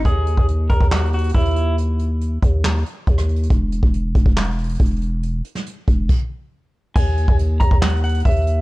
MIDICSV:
0, 0, Header, 1, 4, 480
1, 0, Start_track
1, 0, Tempo, 431655
1, 56, Time_signature, 4, 2, 24, 8
1, 9579, End_track
2, 0, Start_track
2, 0, Title_t, "Clean electric guitar"
2, 0, Program_c, 0, 27
2, 59, Note_on_c, 0, 68, 103
2, 509, Note_off_c, 0, 68, 0
2, 774, Note_on_c, 0, 70, 81
2, 961, Note_off_c, 0, 70, 0
2, 1018, Note_on_c, 0, 66, 91
2, 1203, Note_off_c, 0, 66, 0
2, 1269, Note_on_c, 0, 66, 75
2, 1450, Note_off_c, 0, 66, 0
2, 1498, Note_on_c, 0, 64, 83
2, 1948, Note_off_c, 0, 64, 0
2, 7736, Note_on_c, 0, 80, 110
2, 8187, Note_off_c, 0, 80, 0
2, 8450, Note_on_c, 0, 82, 82
2, 8638, Note_off_c, 0, 82, 0
2, 8692, Note_on_c, 0, 78, 89
2, 8879, Note_off_c, 0, 78, 0
2, 8938, Note_on_c, 0, 78, 85
2, 9123, Note_off_c, 0, 78, 0
2, 9176, Note_on_c, 0, 76, 79
2, 9579, Note_off_c, 0, 76, 0
2, 9579, End_track
3, 0, Start_track
3, 0, Title_t, "808-style bass"
3, 0, Program_c, 1, 38
3, 55, Note_on_c, 1, 39, 114
3, 401, Note_off_c, 1, 39, 0
3, 416, Note_on_c, 1, 39, 100
3, 761, Note_off_c, 1, 39, 0
3, 776, Note_on_c, 1, 39, 104
3, 888, Note_off_c, 1, 39, 0
3, 895, Note_on_c, 1, 39, 107
3, 1471, Note_off_c, 1, 39, 0
3, 1496, Note_on_c, 1, 39, 108
3, 2651, Note_off_c, 1, 39, 0
3, 2697, Note_on_c, 1, 39, 109
3, 3157, Note_off_c, 1, 39, 0
3, 3416, Note_on_c, 1, 39, 102
3, 3877, Note_off_c, 1, 39, 0
3, 3896, Note_on_c, 1, 28, 115
3, 4241, Note_off_c, 1, 28, 0
3, 4257, Note_on_c, 1, 28, 98
3, 4602, Note_off_c, 1, 28, 0
3, 4616, Note_on_c, 1, 28, 107
3, 4728, Note_off_c, 1, 28, 0
3, 4735, Note_on_c, 1, 28, 102
3, 5311, Note_off_c, 1, 28, 0
3, 5336, Note_on_c, 1, 28, 104
3, 6027, Note_off_c, 1, 28, 0
3, 6536, Note_on_c, 1, 28, 102
3, 6766, Note_off_c, 1, 28, 0
3, 7736, Note_on_c, 1, 39, 115
3, 8081, Note_off_c, 1, 39, 0
3, 8096, Note_on_c, 1, 39, 100
3, 8441, Note_off_c, 1, 39, 0
3, 8456, Note_on_c, 1, 39, 107
3, 8568, Note_off_c, 1, 39, 0
3, 8575, Note_on_c, 1, 39, 106
3, 9151, Note_off_c, 1, 39, 0
3, 9176, Note_on_c, 1, 39, 108
3, 9579, Note_off_c, 1, 39, 0
3, 9579, End_track
4, 0, Start_track
4, 0, Title_t, "Drums"
4, 55, Note_on_c, 9, 36, 108
4, 57, Note_on_c, 9, 42, 86
4, 167, Note_off_c, 9, 36, 0
4, 168, Note_off_c, 9, 42, 0
4, 296, Note_on_c, 9, 42, 74
4, 407, Note_off_c, 9, 42, 0
4, 416, Note_on_c, 9, 36, 89
4, 527, Note_off_c, 9, 36, 0
4, 537, Note_on_c, 9, 42, 77
4, 648, Note_off_c, 9, 42, 0
4, 775, Note_on_c, 9, 42, 70
4, 776, Note_on_c, 9, 36, 92
4, 887, Note_off_c, 9, 36, 0
4, 887, Note_off_c, 9, 42, 0
4, 895, Note_on_c, 9, 36, 97
4, 1006, Note_off_c, 9, 36, 0
4, 1015, Note_on_c, 9, 38, 103
4, 1022, Note_on_c, 9, 39, 84
4, 1095, Note_on_c, 9, 42, 63
4, 1126, Note_off_c, 9, 38, 0
4, 1133, Note_off_c, 9, 39, 0
4, 1176, Note_off_c, 9, 42, 0
4, 1176, Note_on_c, 9, 42, 49
4, 1256, Note_off_c, 9, 42, 0
4, 1256, Note_on_c, 9, 42, 67
4, 1316, Note_off_c, 9, 42, 0
4, 1316, Note_on_c, 9, 42, 66
4, 1375, Note_off_c, 9, 42, 0
4, 1375, Note_on_c, 9, 42, 67
4, 1434, Note_off_c, 9, 42, 0
4, 1434, Note_on_c, 9, 42, 69
4, 1495, Note_off_c, 9, 42, 0
4, 1495, Note_on_c, 9, 42, 76
4, 1496, Note_on_c, 9, 36, 98
4, 1554, Note_off_c, 9, 42, 0
4, 1554, Note_on_c, 9, 42, 64
4, 1607, Note_off_c, 9, 36, 0
4, 1615, Note_off_c, 9, 42, 0
4, 1615, Note_on_c, 9, 42, 54
4, 1676, Note_off_c, 9, 42, 0
4, 1676, Note_on_c, 9, 42, 44
4, 1735, Note_off_c, 9, 42, 0
4, 1735, Note_on_c, 9, 42, 76
4, 1846, Note_off_c, 9, 42, 0
4, 1978, Note_on_c, 9, 42, 83
4, 2089, Note_off_c, 9, 42, 0
4, 2215, Note_on_c, 9, 42, 74
4, 2327, Note_off_c, 9, 42, 0
4, 2457, Note_on_c, 9, 42, 81
4, 2568, Note_off_c, 9, 42, 0
4, 2696, Note_on_c, 9, 42, 69
4, 2697, Note_on_c, 9, 36, 89
4, 2807, Note_off_c, 9, 42, 0
4, 2808, Note_off_c, 9, 36, 0
4, 2937, Note_on_c, 9, 38, 103
4, 2944, Note_on_c, 9, 39, 84
4, 3048, Note_off_c, 9, 38, 0
4, 3055, Note_off_c, 9, 39, 0
4, 3180, Note_on_c, 9, 42, 77
4, 3291, Note_off_c, 9, 42, 0
4, 3416, Note_on_c, 9, 36, 98
4, 3416, Note_on_c, 9, 42, 46
4, 3527, Note_off_c, 9, 36, 0
4, 3527, Note_off_c, 9, 42, 0
4, 3536, Note_on_c, 9, 37, 97
4, 3536, Note_on_c, 9, 42, 78
4, 3647, Note_off_c, 9, 42, 0
4, 3648, Note_off_c, 9, 37, 0
4, 3657, Note_on_c, 9, 42, 43
4, 3737, Note_off_c, 9, 42, 0
4, 3737, Note_on_c, 9, 42, 59
4, 3816, Note_off_c, 9, 42, 0
4, 3816, Note_on_c, 9, 42, 74
4, 3896, Note_on_c, 9, 36, 106
4, 3897, Note_off_c, 9, 42, 0
4, 3897, Note_on_c, 9, 42, 85
4, 4007, Note_off_c, 9, 36, 0
4, 4009, Note_off_c, 9, 42, 0
4, 4136, Note_on_c, 9, 42, 76
4, 4247, Note_off_c, 9, 42, 0
4, 4257, Note_on_c, 9, 36, 91
4, 4368, Note_off_c, 9, 36, 0
4, 4377, Note_on_c, 9, 42, 80
4, 4488, Note_off_c, 9, 42, 0
4, 4616, Note_on_c, 9, 36, 91
4, 4616, Note_on_c, 9, 42, 72
4, 4727, Note_off_c, 9, 36, 0
4, 4727, Note_off_c, 9, 42, 0
4, 4735, Note_on_c, 9, 36, 98
4, 4846, Note_off_c, 9, 36, 0
4, 4855, Note_on_c, 9, 38, 101
4, 4862, Note_on_c, 9, 39, 79
4, 4936, Note_on_c, 9, 42, 64
4, 4966, Note_off_c, 9, 38, 0
4, 4974, Note_off_c, 9, 39, 0
4, 5017, Note_off_c, 9, 42, 0
4, 5017, Note_on_c, 9, 42, 49
4, 5097, Note_off_c, 9, 42, 0
4, 5097, Note_on_c, 9, 42, 63
4, 5157, Note_off_c, 9, 42, 0
4, 5157, Note_on_c, 9, 42, 68
4, 5217, Note_off_c, 9, 42, 0
4, 5217, Note_on_c, 9, 42, 68
4, 5277, Note_off_c, 9, 42, 0
4, 5277, Note_on_c, 9, 42, 70
4, 5336, Note_off_c, 9, 42, 0
4, 5336, Note_on_c, 9, 36, 97
4, 5336, Note_on_c, 9, 42, 73
4, 5397, Note_off_c, 9, 42, 0
4, 5397, Note_on_c, 9, 42, 68
4, 5447, Note_off_c, 9, 36, 0
4, 5457, Note_off_c, 9, 42, 0
4, 5457, Note_on_c, 9, 42, 55
4, 5517, Note_off_c, 9, 42, 0
4, 5517, Note_on_c, 9, 42, 46
4, 5575, Note_off_c, 9, 42, 0
4, 5575, Note_on_c, 9, 42, 76
4, 5686, Note_off_c, 9, 42, 0
4, 5817, Note_on_c, 9, 42, 82
4, 5928, Note_off_c, 9, 42, 0
4, 6055, Note_on_c, 9, 42, 76
4, 6167, Note_off_c, 9, 42, 0
4, 6174, Note_on_c, 9, 38, 68
4, 6286, Note_off_c, 9, 38, 0
4, 6296, Note_on_c, 9, 42, 78
4, 6407, Note_off_c, 9, 42, 0
4, 6535, Note_on_c, 9, 42, 68
4, 6536, Note_on_c, 9, 36, 91
4, 6646, Note_off_c, 9, 42, 0
4, 6647, Note_off_c, 9, 36, 0
4, 6774, Note_on_c, 9, 49, 91
4, 6775, Note_on_c, 9, 36, 105
4, 6886, Note_off_c, 9, 36, 0
4, 6886, Note_off_c, 9, 49, 0
4, 7735, Note_on_c, 9, 49, 106
4, 7736, Note_on_c, 9, 36, 112
4, 7846, Note_off_c, 9, 49, 0
4, 7847, Note_off_c, 9, 36, 0
4, 7975, Note_on_c, 9, 42, 78
4, 8086, Note_off_c, 9, 42, 0
4, 8096, Note_on_c, 9, 36, 98
4, 8207, Note_off_c, 9, 36, 0
4, 8216, Note_on_c, 9, 42, 83
4, 8328, Note_off_c, 9, 42, 0
4, 8455, Note_on_c, 9, 42, 70
4, 8456, Note_on_c, 9, 36, 90
4, 8566, Note_off_c, 9, 42, 0
4, 8567, Note_off_c, 9, 36, 0
4, 8575, Note_on_c, 9, 36, 99
4, 8686, Note_off_c, 9, 36, 0
4, 8694, Note_on_c, 9, 38, 107
4, 8701, Note_on_c, 9, 39, 85
4, 8775, Note_on_c, 9, 42, 66
4, 8805, Note_off_c, 9, 38, 0
4, 8812, Note_off_c, 9, 39, 0
4, 8855, Note_off_c, 9, 42, 0
4, 8855, Note_on_c, 9, 42, 49
4, 8935, Note_off_c, 9, 42, 0
4, 8935, Note_on_c, 9, 42, 68
4, 8996, Note_off_c, 9, 42, 0
4, 8996, Note_on_c, 9, 42, 66
4, 9056, Note_off_c, 9, 42, 0
4, 9056, Note_on_c, 9, 42, 69
4, 9116, Note_off_c, 9, 42, 0
4, 9116, Note_on_c, 9, 42, 69
4, 9176, Note_off_c, 9, 42, 0
4, 9176, Note_on_c, 9, 36, 102
4, 9176, Note_on_c, 9, 42, 76
4, 9236, Note_off_c, 9, 42, 0
4, 9236, Note_on_c, 9, 42, 66
4, 9287, Note_off_c, 9, 36, 0
4, 9297, Note_off_c, 9, 42, 0
4, 9297, Note_on_c, 9, 42, 54
4, 9356, Note_off_c, 9, 42, 0
4, 9356, Note_on_c, 9, 42, 45
4, 9415, Note_off_c, 9, 42, 0
4, 9415, Note_on_c, 9, 42, 79
4, 9526, Note_off_c, 9, 42, 0
4, 9579, End_track
0, 0, End_of_file